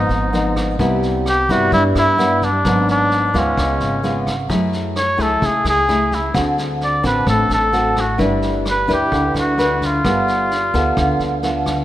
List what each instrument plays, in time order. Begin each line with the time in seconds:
Already playing: nylon-string guitar G#2 F3 B3 D#4, muted trumpet D#4
0.09 upright bass G#1, snare
0.33 nylon-string guitar F3 B3 D#4, snare
0.56 kick, cross-stick, snare
0.79 upright bass C2, nylon-string guitar C3 G3 B3 E4, kick, snare
1.03 snare
1.26 muted trumpet G4, cross-stick, snare
1.49 upright bass G2, nylon-string guitar G3 B3 E4, muted trumpet F#4, kick, snare
1.72 upright bass G2, nylon-string guitar G2, muted trumpet E4, kick, snare
1.95 upright bass G2, muted trumpet E4, cross-stick, snare
2.18 nylon-string guitar G3 B3 E4, snare
2.42 muted trumpet D4, kick, snare
2.65 upright bass G#1, nylon-string guitar G#2 F#3 B3 D4, kick, cross-stick, snare
2.88 muted trumpet D4, snare
3.11 snare
3.34 upright bass D2, nylon-string guitar G#3 B3 F4, kick, snare
3.39 muted trumpet C#4
3.57 upright bass C#2, nylon-string guitar C#3, kick, cross-stick, snare
3.80 upright bass G#1, snare
4.03 nylon-string guitar G#3 B3 F4, snare
4.27 kick, cross-stick, snare
4.49 upright bass F#2, nylon-string guitar F#3 A3 E4 G#4, kick, snare
4.73 snare
4.96 muted trumpet C#5, cross-stick, snare
5.18 upright bass C#2, nylon-string guitar A3 E4 G#4, kick, snare
5.22 muted trumpet A4
5.41 upright bass C#2, nylon-string guitar C#3, kick, snare
5.46 muted trumpet G#4
5.64 upright bass C#2, cross-stick, snare
5.69 muted trumpet G#4
5.88 nylon-string guitar A3 E4 G#4, snare
6.11 muted trumpet E4, kick, snare
6.34 upright bass D2, nylon-string guitar D3 C4 F#4 A4, kick, cross-stick, snare
6.58 snare
6.81 muted trumpet D5, snare
7.03 upright bass A1, nylon-string guitar C4 F#4 A4, muted trumpet B4, kick, snare
7.26 upright bass A1, nylon-string guitar A2, muted trumpet A4, kick, cross-stick, snare
7.49 upright bass A1, snare
7.54 muted trumpet A4
7.73 nylon-string guitar C4 F#4 A4, snare
7.96 kick, cross-stick, snare
8.00 muted trumpet F#4
8.18 upright bass G1, nylon-string guitar G3 D4 E4 B4, kick, snare
8.42 snare
8.65 cross-stick, snare
8.70 muted trumpet B4
8.88 upright bass D2, nylon-string guitar D4 E4 B4, kick, snare
8.94 muted trumpet G4
9.12 upright bass D2, nylon-string guitar D3, kick, snare
9.34 upright bass D2, cross-stick, snare
9.40 muted trumpet F#4
9.58 nylon-string guitar D4 E4 B4, snare
9.81 kick, snare
9.86 muted trumpet F4
10.04 upright bass G1, nylon-string guitar G3 B3 F4 A4, kick, cross-stick, snare
10.28 snare
10.51 snare
10.74 upright bass D2, nylon-string guitar B3 F4 A4, kick, snare
10.97 upright bass D2, nylon-string guitar D3, kick, cross-stick, snare
11.19 upright bass D2, snare
11.43 nylon-string guitar B3 F4 A4, snare
11.66 kick, cross-stick, snare